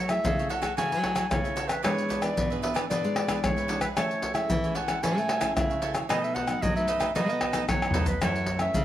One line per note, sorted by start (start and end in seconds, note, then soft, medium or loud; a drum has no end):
0.00 0.17 F#3 medium
0.00 0.22 F#3 medium
0.09 0.59 A3 medium
0.09 0.60 E4 medium
0.09 0.60 G#4 medium
0.09 0.37 A4 soft
0.09 0.36 C#5 soft
0.09 0.36 E5 medium
0.09 0.48 E5 medium
0.09 pandeiro soft
0.09 tamborim medium
0.09 shaker medium
0.25 0.47 C#3 loud
0.25 0.75 C#3 soft
0.25 pandeiro medium
0.25 shaker medium
0.25 surdo loud
0.39 0.49 A4 soft
0.39 0.49 C#5 soft
0.39 0.50 E5 soft
0.39 pandeiro soft
0.39 shaker soft
0.49 0.60 F#4 medium
0.49 0.61 A4 medium
0.49 0.61 C#5 medium
0.49 0.61 E5 medium
0.49 0.75 F#5 medium
0.49 pandeiro medium
0.61 0.72 A3 medium
0.61 0.73 E4 medium
0.61 0.72 F#4 medium
0.61 0.73 G#4 medium
0.61 0.72 A4 medium
0.61 0.72 C#5 medium
0.61 0.72 E5 medium
0.61 pandeiro soft
0.61 tamborim medium
0.61 shaker medium
0.61 surdo soft
0.77 0.91 C#3 medium
0.77 1.28 F#3 medium
0.77 0.94 A3 medium
0.77 0.94 E4 medium
0.77 1.02 F#4 medium
0.77 0.94 G#4 medium
0.77 1.02 A4 medium
0.77 1.03 C#5 medium
0.77 1.04 E5 medium
0.77 1.32 G#5 loud
0.77 pandeiro medium
0.77 shaker medium
0.77 surdo medium
0.92 1.26 F#3 medium
0.92 pandeiro soft
0.92 shaker soft
1.03 1.26 A3 medium
1.03 1.26 E4 medium
1.03 1.14 F#4 soft
1.03 1.27 G#4 medium
1.03 1.14 A4 medium
1.03 1.15 C#5 soft
1.03 1.15 E5 medium
1.03 pandeiro medium
1.03 tamborim medium
1.03 surdo soft
1.15 1.25 F#4 medium
1.15 1.26 A4 medium
1.15 1.26 C#5 medium
1.15 1.26 E5 medium
1.15 pandeiro medium
1.15 tamborim medium
1.15 shaker medium
1.15 surdo soft
1.31 1.81 C#3 medium
1.31 1.76 C#3 medium
1.31 1.65 A3 soft
1.31 1.65 E4 soft
1.31 1.66 G#4 medium
1.31 1.69 C#5 medium
1.31 pandeiro medium
1.31 tamborim medium
1.31 shaker medium
1.31 surdo loud
1.44 1.55 A4 soft
1.44 1.56 C#5 soft
1.44 1.56 E5 soft
1.44 pandeiro soft
1.44 shaker soft
1.56 1.69 F#4 medium
1.56 1.68 A4 medium
1.56 1.67 C#5 medium
1.56 1.67 E5 medium
1.56 pandeiro medium
1.56 shaker medium
1.68 1.82 A4 soft
1.68 1.83 B4 medium
1.68 1.82 C#5 soft
1.68 1.82 E5 soft
1.68 pandeiro medium
1.68 tamborim medium
1.68 shaker medium
1.68 surdo soft
1.83 2.35 G#2 medium
1.83 2.20 E3 medium
1.83 2.29 G#3 medium
1.83 2.20 B3 soft
1.83 2.07 D4 medium
1.83 2.20 D4 medium
1.83 2.08 G#4 medium
1.83 2.09 B4 medium
1.83 2.23 C#5 medium
1.83 2.09 E5 medium
1.83 pandeiro medium
1.83 tamborim medium
1.83 shaker medium
1.83 surdo medium
1.98 pandeiro soft
1.98 shaker soft
2.08 2.22 D4 soft
2.08 2.21 G#4 soft
2.08 2.21 B4 soft
2.08 2.20 E5 soft
2.08 pandeiro medium
2.08 shaker medium
2.08 surdo soft
2.21 2.46 E3 medium
2.21 2.46 B3 medium
2.21 2.46 D4 medium
2.21 2.49 G#4 soft
2.21 2.49 B4 soft
2.21 2.51 D5 medium
2.21 2.48 E5 medium
2.21 pandeiro soft
2.21 tamborim medium
2.21 shaker medium
2.37 2.88 G#2 medium
2.37 2.60 B2 loud
2.37 pandeiro medium
2.37 shaker medium
2.37 surdo medium
2.50 2.73 E3 soft
2.50 2.74 B3 medium
2.50 2.74 D4 medium
2.50 2.62 G#4 soft
2.50 2.62 B4 soft
2.50 2.62 E5 soft
2.50 pandeiro soft
2.50 shaker soft
2.62 2.73 D4 medium
2.62 2.73 G#4 medium
2.62 2.74 B4 medium
2.62 2.75 E5 medium
2.62 2.74 E5 medium
2.62 pandeiro medium
2.74 2.85 E3 medium
2.74 2.85 B3 medium
2.74 2.85 D4 medium
2.74 2.86 D4 medium
2.74 2.85 G#4 medium
2.74 2.85 B4 medium
2.74 2.85 E5 medium
2.74 pandeiro medium
2.74 tamborim medium
2.74 shaker medium
2.74 surdo soft
2.89 3.41 G#2 medium
2.89 3.04 B2 medium
2.89 3.26 E3 medium
2.89 3.26 B3 medium
2.89 3.14 D4 medium
2.89 3.26 D4 medium
2.89 3.15 G#4 medium
2.89 3.16 B4 medium
2.89 3.45 D5 loud
2.89 3.16 E5 medium
2.89 pandeiro medium
2.89 shaker medium
2.89 surdo medium
3.04 3.38 G#3 medium
3.04 pandeiro soft
3.04 shaker soft
3.15 3.27 D4 soft
3.15 3.28 G#4 soft
3.15 3.28 B4 medium
3.15 3.28 E5 soft
3.15 pandeiro medium
3.15 tamborim medium
3.27 3.65 E3 medium
3.27 3.65 B3 medium
3.27 3.65 D4 medium
3.27 3.38 D4 medium
3.27 3.39 G#4 medium
3.27 3.39 B4 medium
3.27 3.39 E5 medium
3.27 pandeiro medium
3.27 tamborim medium
3.27 shaker medium
3.27 surdo soft
3.43 3.94 G#2 medium
3.43 3.89 G#3 medium
3.43 3.81 C#5 medium
3.43 pandeiro medium
3.43 tamborim medium
3.43 shaker medium
3.43 surdo medium
3.57 3.68 G#4 soft
3.57 3.68 B4 soft
3.57 3.69 E5 soft
3.57 pandeiro soft
3.57 shaker soft
3.68 3.85 E3 medium
3.68 3.85 B3 medium
3.68 3.81 D4 medium
3.68 3.85 D4 medium
3.68 3.81 G#4 medium
3.68 3.81 B4 medium
3.68 3.80 E5 medium
3.68 pandeiro medium
3.81 3.95 G#4 soft
3.81 3.88 B4 medium
3.81 3.95 B4 soft
3.81 3.95 E5 soft
3.81 pandeiro medium
3.81 tamborim medium
3.81 shaker medium
3.81 surdo soft
3.96 4.47 A2 medium
3.96 4.42 A3 medium
3.96 4.32 C#4 medium
3.96 4.33 E4 medium
3.96 4.21 A4 medium
3.96 4.34 C#5 medium
3.96 4.22 C#5 medium
3.96 4.22 E5 medium
3.96 4.22 G#5 medium
3.96 pandeiro medium
3.96 tamborim medium
3.96 shaker medium
3.96 surdo medium
4.11 pandeiro soft
4.11 shaker soft
4.22 4.35 A4 soft
4.22 4.34 C#5 soft
4.22 4.34 E5 soft
4.22 4.33 G#5 medium
4.22 pandeiro medium
4.22 surdo soft
4.34 4.58 G#3 medium
4.34 4.58 C#4 medium
4.34 4.58 E4 medium
4.34 4.62 C#5 soft
4.34 4.77 E5 loud
4.34 4.61 E5 soft
4.34 4.61 G#5 soft
4.34 pandeiro soft
4.34 tamborim medium
4.34 shaker medium
4.50 5.00 E3 medium
4.50 4.73 E3 loud
4.50 pandeiro medium
4.50 shaker medium
4.50 surdo medium
4.64 4.86 G#3 medium
4.64 4.86 C#4 medium
4.64 4.86 E4 medium
4.64 4.74 C#5 soft
4.64 4.75 E5 soft
4.64 4.75 G#5 soft
4.64 pandeiro soft
4.64 shaker soft
4.75 4.87 A4 medium
4.75 4.87 C#5 medium
4.75 4.87 E5 medium
4.75 5.04 F#5 medium
4.75 4.87 G#5 medium
4.75 pandeiro medium
4.88 4.98 G#3 medium
4.88 4.98 C#4 medium
4.88 4.98 E4 medium
4.88 4.98 A4 medium
4.88 4.98 C#5 medium
4.88 4.98 E5 medium
4.88 4.98 G#5 medium
4.88 pandeiro medium
4.88 tamborim medium
4.88 shaker medium
4.88 surdo soft
5.03 5.53 A2 medium
5.03 5.17 E3 medium
5.03 5.28 G#3 soft
5.03 5.28 C#4 medium
5.03 5.28 E4 medium
5.03 5.27 A4 medium
5.03 5.28 C#5 medium
5.03 5.28 E5 medium
5.03 5.55 G#5 loud
5.03 5.29 G#5 medium
5.03 pandeiro medium
5.03 shaker medium
5.03 surdo medium
5.17 5.51 A3 medium
5.17 pandeiro soft
5.17 shaker soft
5.29 5.40 A4 soft
5.29 5.40 C#5 soft
5.29 5.40 E5 soft
5.29 5.40 G#5 medium
5.29 pandeiro medium
5.29 tamborim medium
5.40 5.77 G#3 medium
5.40 5.77 C#4 medium
5.40 5.78 E4 medium
5.40 5.51 A4 medium
5.40 5.51 C#5 medium
5.40 5.51 E5 medium
5.40 5.51 G#5 medium
5.40 pandeiro medium
5.40 tamborim medium
5.40 shaker medium
5.40 surdo soft
5.56 6.02 C#3 medium
5.56 6.07 E3 soft
5.56 5.93 E5 medium
5.56 pandeiro medium
5.56 tamborim medium
5.56 shaker medium
5.56 surdo loud
5.70 5.81 C#5 soft
5.70 5.81 E5 soft
5.70 5.82 G#5 soft
5.70 pandeiro soft
5.70 shaker soft
5.82 6.05 G#3 medium
5.82 6.05 C#4 soft
5.82 6.05 E4 medium
5.82 5.94 A4 medium
5.82 5.95 C#5 medium
5.82 5.94 E5 medium
5.82 5.92 G#5 medium
5.82 pandeiro medium
5.94 6.08 C#5 soft
5.94 6.08 E5 soft
5.94 6.07 G#5 medium
5.94 pandeiro medium
5.94 tamborim medium
5.94 shaker medium
5.94 surdo soft
6.09 6.54 B2 loud
6.09 6.60 B2 medium
6.09 6.35 F#3 medium
6.09 6.35 A3 soft
6.09 6.33 D#4 medium
6.09 6.35 D#4 medium
6.09 6.34 A4 medium
6.09 6.34 B4 medium
6.09 6.25 D#5 medium
6.09 6.35 D#5 medium
6.09 pandeiro medium
6.09 tamborim medium
6.09 shaker medium
6.09 surdo medium
6.23 6.36 E5 medium
6.23 pandeiro soft
6.23 shaker soft
6.35 6.48 D#4 soft
6.35 6.47 A4 soft
6.35 6.47 B4 medium
6.35 6.46 D#5 medium
6.35 6.64 F#5 medium
6.35 pandeiro medium
6.35 surdo soft
6.47 6.71 F#3 medium
6.47 6.71 A3 medium
6.47 6.71 D#4 medium
6.47 6.74 A4 soft
6.47 6.74 B4 soft
6.47 6.74 D#5 soft
6.47 pandeiro soft
6.47 tamborim medium
6.47 shaker medium
6.62 7.13 F#2 medium
6.62 6.85 F#3 medium
6.62 6.76 D#5 medium
6.62 pandeiro medium
6.62 shaker medium
6.62 surdo medium
6.76 6.98 F#3 soft
6.76 6.99 A3 medium
6.76 6.99 D#4 medium
6.76 6.87 A4 soft
6.76 6.87 B4 soft
6.76 6.88 D#5 soft
6.76 7.13 E5 medium
6.76 pandeiro soft
6.76 shaker soft
6.87 6.98 D#4 medium
6.87 6.98 A4 medium
6.87 6.99 B4 medium
6.87 6.99 D#5 medium
6.87 pandeiro medium
6.87 shaker medium
7.00 7.10 F#3 medium
7.00 7.11 A3 medium
7.00 7.10 D#4 medium
7.00 7.11 D#4 medium
7.00 7.10 A4 medium
7.00 7.10 B4 medium
7.00 7.10 D#5 medium
7.00 pandeiro soft
7.00 tamborim medium
7.00 shaker medium
7.00 surdo soft
7.15 7.66 B2 medium
7.15 7.30 F#3 medium
7.15 7.41 F#3 medium
7.15 7.41 A3 medium
7.15 7.40 D#4 medium
7.15 7.41 D#4 medium
7.15 7.40 A4 medium
7.15 7.41 B4 medium
7.15 7.65 D#5 medium
7.15 7.41 D#5 medium
7.15 pandeiro medium
7.15 shaker medium
7.15 surdo medium
7.29 7.63 B3 medium
7.29 pandeiro soft
7.29 shaker soft
7.41 7.52 D#4 soft
7.41 7.53 A4 soft
7.41 7.53 B4 soft
7.41 7.53 D#5 soft
7.41 pandeiro medium
7.41 tamborim medium
7.41 surdo soft
7.53 7.90 F#3 soft
7.53 7.90 A3 medium
7.53 7.63 D#4 medium
7.53 7.91 D#4 medium
7.53 7.64 A4 medium
7.53 7.64 B4 medium
7.53 7.64 D#5 medium
7.53 pandeiro medium
7.53 tamborim medium
7.53 shaker medium
7.53 surdo soft
7.68 8.19 F#2 medium
7.68 8.14 F#3 medium
7.68 8.09 C#5 medium
7.68 pandeiro medium
7.68 tamborim medium
7.68 shaker medium
7.68 surdo medium
7.82 7.93 A4 soft
7.82 7.94 B4 soft
7.82 7.95 D#5 soft
7.82 pandeiro soft
7.82 tamborim medium
7.82 shaker soft
7.91 8.10 F#3 soft
7.91 8.10 A3 soft
7.91 8.07 D#4 medium
7.91 8.07 A4 medium
7.91 surdo medium
7.91 pandeiro medium
7.95 8.11 D#4 soft
7.95 8.06 B4 medium
7.95 8.05 D#5 medium
7.99 surdo loud
8.06 8.20 B4 soft
8.06 8.21 B4 medium
8.06 8.20 D#5 soft
8.06 pandeiro medium
8.06 shaker medium
8.06 surdo medium
8.22 8.72 F#2 medium
8.22 8.67 F#2 loud
8.22 8.47 E3 medium
8.22 8.47 A3 medium
8.22 8.47 C#4 medium
8.22 8.47 F#4 medium
8.22 8.48 A4 medium
8.22 8.59 C#5 medium
8.22 8.48 C#5 medium
8.22 8.48 E5 medium
8.22 pandeiro medium
8.22 tamborim medium
8.22 shaker medium
8.22 surdo medium
8.36 pandeiro soft
8.36 shaker soft
8.46 8.60 F#4 soft
8.46 8.61 A4 soft
8.46 8.60 C#5 soft
8.46 8.59 E5 soft
8.46 pandeiro medium
8.46 surdo soft
8.59 8.83 E3 medium
8.59 8.83 A3 medium
8.59 8.84 C#4 medium
8.59 8.85 A4 soft
8.59 8.85 C#5 soft
8.59 8.85 E5 soft
8.59 8.85 E5 medium
8.59 pandeiro soft
8.59 tamborim medium
8.59 shaker medium
8.74 8.85 C#3 loud
8.74 8.85 C#3 medium
8.74 pandeiro medium
8.74 shaker medium
8.74 surdo medium